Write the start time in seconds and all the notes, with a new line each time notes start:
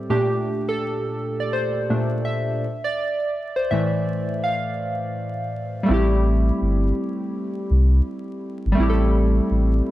Already playing: A2 G3 C4 G4
0.10 A#2 A3 D4 G4
0.68 A4
1.40 D5
1.53 C5
1.90 A#2 A3 D4
2.25 E5
2.84 D5
3.56 C5
3.71 A2 E3 A3 E5
4.44 F5
5.83 G3 A3
5.88 A1 C4 E4
5.94 G4
6.61 G1
7.71 C2
8.66 G#1
8.72 G3 A3
8.78 A1 C4 E4
8.83 G4
8.90 A4
9.51 A1